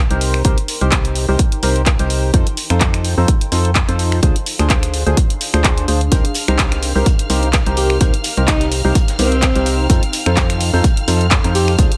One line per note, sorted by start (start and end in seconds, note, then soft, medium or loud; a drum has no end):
0.00 4.23 D#4 medium
0.00 2.34 A#4 medium
0.00 3.10 G5 medium
0.00 11.79 C6 medium
0.11 0.43 C2 medium
0.11 0.42 C3 medium
0.11 0.42 D#4 medium
0.11 0.42 G4 medium
0.11 0.42 A#4 medium
0.11 0.42 C5 medium
0.11 closed hi-hat soft
0.21 open hi-hat loud
0.34 finger snap medium
0.45 0.55 C2 medium
0.45 0.57 C3 medium
0.45 0.57 D#4 medium
0.45 0.57 G4 medium
0.45 0.57 A#4 medium
0.45 0.57 C5 loud
0.45 kick loud
0.45 closed hi-hat medium
0.58 closed hi-hat soft
0.68 open hi-hat medium
0.81 1.26 C2 medium
0.81 1.25 C3 medium
0.81 1.25 D#4 medium
0.81 1.25 G4 medium
0.81 1.25 A#4 medium
0.81 1.25 C5 medium
0.81 closed hi-hat soft
0.92 kick loud
0.92 clap loud
0.92 closed hi-hat medium
1.05 closed hi-hat soft
1.15 open hi-hat loud
1.29 1.37 C2 medium
1.29 1.39 C3 medium
1.29 1.39 D#4 medium
1.29 1.39 G4 medium
1.29 1.39 A#4 medium
1.29 1.39 C5 medium
1.39 kick loud
1.39 closed hi-hat medium
1.52 closed hi-hat soft
1.63 1.97 C2 medium
1.63 1.82 C3 medium
1.63 1.82 D#4 medium
1.63 1.82 G4 medium
1.63 1.82 A#4 medium
1.63 1.82 C5 loud
1.63 open hi-hat medium
1.76 closed hi-hat soft
1.86 kick medium
1.86 clap loud
1.86 closed hi-hat medium
1.99 2.32 C2 medium
1.99 2.31 C3 medium
1.99 2.31 D#4 medium
1.99 2.31 G4 medium
1.99 2.31 A#4 medium
1.99 2.31 C5 medium
1.99 closed hi-hat soft
2.10 open hi-hat medium
2.34 2.44 F2 medium
2.34 2.46 F3 medium
2.34 2.46 D#4 medium
2.34 2.46 F4 medium
2.34 2.46 A4 medium
2.34 2.46 C5 medium
2.34 kick loud
2.34 closed hi-hat medium
2.47 closed hi-hat soft
2.57 open hi-hat loud
2.70 3.15 F2 medium
2.70 3.15 F3 medium
2.70 3.15 D#4 medium
2.70 3.15 F4 medium
2.70 3.15 A4 medium
2.70 3.15 C5 medium
2.70 finger snap medium
2.70 closed hi-hat soft
2.81 kick medium
2.81 clap loud
2.81 closed hi-hat medium
2.94 finger snap medium
2.94 closed hi-hat medium
3.05 open hi-hat medium
3.18 3.26 F2 loud
3.18 3.28 F3 medium
3.18 3.28 D#4 medium
3.18 3.28 F4 medium
3.18 3.28 A4 medium
3.18 3.28 C5 medium
3.18 7.64 F5 medium
3.28 kick loud
3.28 closed hi-hat medium
3.41 closed hi-hat soft
3.52 3.86 F2 medium
3.52 3.71 F3 medium
3.52 3.71 D#4 medium
3.52 3.71 F4 medium
3.52 3.71 A4 medium
3.52 3.71 C5 loud
3.52 open hi-hat medium
3.65 closed hi-hat soft
3.75 kick medium
3.75 clap loud
3.75 closed hi-hat medium
3.88 4.21 F2 medium
3.88 4.20 F3 medium
3.88 4.20 D#4 medium
3.88 4.20 F4 medium
3.88 4.20 A4 medium
3.88 4.20 C5 medium
3.88 closed hi-hat medium
3.99 open hi-hat medium
4.12 finger snap medium
4.23 4.33 D2 medium
4.23 4.35 D3 medium
4.23 4.35 D4 medium
4.23 6.12 D4 medium
4.23 4.35 F4 medium
4.23 4.35 G#4 medium
4.23 4.35 C5 medium
4.23 kick loud
4.23 closed hi-hat medium
4.36 6.12 G#4 medium
4.36 closed hi-hat medium
4.46 open hi-hat loud
4.59 5.04 D2 medium
4.59 5.03 D3 medium
4.59 5.03 D4 medium
4.59 5.03 F4 medium
4.59 5.03 G#4 medium
4.59 5.03 C5 medium
4.59 finger snap medium
4.59 closed hi-hat soft
4.70 kick medium
4.70 clap loud
4.70 closed hi-hat medium
4.83 finger snap medium
4.83 closed hi-hat medium
4.94 open hi-hat medium
5.06 5.15 D2 loud
5.06 5.17 D3 medium
5.06 5.17 D4 medium
5.06 5.17 F4 medium
5.06 5.17 G#4 medium
5.06 5.17 C5 medium
5.06 closed hi-hat soft
5.17 kick loud
5.17 closed hi-hat medium
5.30 closed hi-hat soft
5.41 open hi-hat medium
5.54 5.86 D2 loud
5.54 5.85 D3 medium
5.54 5.85 D4 medium
5.54 5.85 F4 medium
5.54 5.85 G#4 medium
5.54 5.85 C5 loud
5.54 finger snap medium
5.54 closed hi-hat soft
5.64 kick medium
5.64 clap loud
5.64 closed hi-hat medium
5.78 closed hi-hat soft
5.88 6.10 D2 medium
5.88 6.01 D4 medium
5.88 6.01 F4 medium
5.88 6.01 G#4 medium
5.88 6.01 C5 medium
5.88 open hi-hat loud
6.01 closed hi-hat soft
6.12 6.22 C2 medium
6.12 6.24 C3 medium
6.12 6.24 D#4 medium
6.12 11.79 D#4 medium
6.12 6.24 G4 medium
6.12 6.24 A#4 medium
6.12 6.24 C5 medium
6.12 11.97 F5 medium
6.12 11.97 F6 medium
6.12 kick loud
6.12 closed hi-hat medium
6.25 closed hi-hat medium
6.34 9.90 A#4 medium
6.34 closed hi-hat medium
6.34 open hi-hat loud
6.48 6.93 C2 medium
6.48 6.92 C3 medium
6.48 6.92 D#4 medium
6.48 6.92 G4 medium
6.48 6.92 A#4 medium
6.48 6.92 C5 medium
6.48 finger snap medium
6.48 closed hi-hat soft
6.59 kick loud
6.59 snare loud
6.59 clap loud
6.59 closed hi-hat medium
6.72 finger snap medium
6.72 snare soft
6.72 closed hi-hat medium
6.83 closed hi-hat medium
6.83 open hi-hat loud
6.95 7.04 C2 loud
6.95 7.06 C3 medium
6.95 7.06 D#4 medium
6.95 7.06 G4 medium
6.95 7.06 A#4 medium
6.95 7.06 C5 loud
6.95 closed hi-hat soft
7.06 kick loud
7.06 closed hi-hat medium
7.19 closed hi-hat medium
7.28 7.64 C2 medium
7.28 7.49 C3 medium
7.28 7.49 D#4 medium
7.28 7.49 G4 medium
7.28 7.49 A#4 medium
7.28 7.49 C5 loud
7.28 10.66 G5 medium
7.28 closed hi-hat medium
7.28 open hi-hat medium
7.43 closed hi-hat soft
7.53 kick loud
7.53 snare loud
7.53 clap loud
7.53 closed hi-hat medium
7.66 7.99 C2 medium
7.66 7.98 C3 medium
7.66 7.98 D#4 medium
7.66 7.98 G4 medium
7.66 7.98 A#4 medium
7.66 7.98 C5 medium
7.66 closed hi-hat medium
7.77 7.97 G4 medium
7.77 closed hi-hat medium
7.77 open hi-hat loud
7.90 finger snap medium
8.01 8.11 C2 medium
8.01 8.13 D#4 medium
8.01 8.13 G4 medium
8.01 8.13 A#4 medium
8.01 8.13 C5 medium
8.01 kick loud
8.01 closed hi-hat medium
8.14 closed hi-hat soft
8.24 closed hi-hat medium
8.24 open hi-hat loud
8.37 8.82 C2 medium
8.37 8.81 C3 medium
8.37 8.81 D#4 medium
8.37 8.81 G4 medium
8.37 8.81 A#4 medium
8.37 8.81 C5 medium
8.37 closed hi-hat soft
8.48 8.68 D#4 medium
8.48 kick loud
8.48 snare loud
8.48 clap loud
8.48 closed hi-hat medium
8.60 snare soft
8.60 closed hi-hat soft
8.72 closed hi-hat medium
8.72 open hi-hat loud
8.85 8.93 C2 loud
8.85 8.95 C3 medium
8.85 8.95 D#4 medium
8.85 8.95 G4 medium
8.85 8.95 A#4 medium
8.85 8.95 C5 medium
8.95 kick loud
8.95 closed hi-hat medium
9.08 snare soft
9.08 closed hi-hat soft
9.19 9.53 C2 loud
9.19 9.38 C3 medium
9.19 9.85 C4 medium
9.19 9.38 D#4 medium
9.19 9.38 G4 medium
9.19 9.38 A#4 medium
9.19 9.38 C5 medium
9.19 closed hi-hat medium
9.19 open hi-hat loud
9.32 closed hi-hat soft
9.42 kick loud
9.42 snare loud
9.42 clap loud
9.42 closed hi-hat medium
9.55 9.88 C2 loud
9.55 9.87 C3 medium
9.55 9.87 D#4 medium
9.55 9.87 G4 medium
9.55 9.87 A#4 medium
9.55 9.87 C5 medium
9.55 snare soft
9.55 closed hi-hat soft
9.66 closed hi-hat medium
9.66 open hi-hat loud
9.90 10.00 F2 medium
9.90 10.02 F3 medium
9.90 10.02 D#4 medium
9.90 10.02 F4 medium
9.90 10.02 A4 medium
9.90 10.02 C5 medium
9.90 kick loud
9.90 closed hi-hat medium
10.02 11.79 A4 medium
10.02 closed hi-hat soft
10.13 closed hi-hat medium
10.13 open hi-hat loud
10.26 10.71 F2 loud
10.26 10.70 F3 medium
10.26 10.70 D#4 medium
10.26 10.70 F4 medium
10.26 10.70 A4 medium
10.26 10.70 C5 medium
10.26 finger snap medium
10.26 closed hi-hat soft
10.37 kick loud
10.37 snare loud
10.37 clap loud
10.37 closed hi-hat medium
10.50 finger snap medium
10.50 snare soft
10.50 closed hi-hat soft
10.60 closed hi-hat medium
10.60 open hi-hat loud
10.73 10.82 F2 loud
10.73 10.84 F3 medium
10.73 10.84 D#4 medium
10.73 10.84 F4 medium
10.73 10.84 A4 medium
10.73 10.84 C5 loud
10.73 11.97 F5 medium
10.73 closed hi-hat soft
10.84 kick loud
10.84 closed hi-hat medium
10.97 closed hi-hat soft
11.08 11.42 F2 medium
11.08 11.27 F3 medium
11.08 11.27 D#4 medium
11.08 11.27 F4 medium
11.08 11.27 A4 medium
11.08 11.27 C5 medium
11.08 closed hi-hat medium
11.08 open hi-hat loud
11.21 closed hi-hat soft
11.31 kick loud
11.31 snare loud
11.31 clap loud
11.31 closed hi-hat medium
11.44 11.76 F2 medium
11.44 11.76 F3 medium
11.44 11.76 D#4 medium
11.44 11.76 F4 medium
11.44 11.76 A4 medium
11.44 11.76 C5 medium
11.44 closed hi-hat soft
11.55 11.75 G4 medium
11.55 closed hi-hat medium
11.55 open hi-hat loud
11.68 finger snap medium
11.78 11.89 D2 medium
11.78 11.91 D3 medium
11.78 11.91 D4 medium
11.78 11.91 F4 medium
11.78 11.91 G#4 medium
11.78 11.91 C5 medium
11.78 kick loud
11.78 closed hi-hat medium
11.92 closed hi-hat soft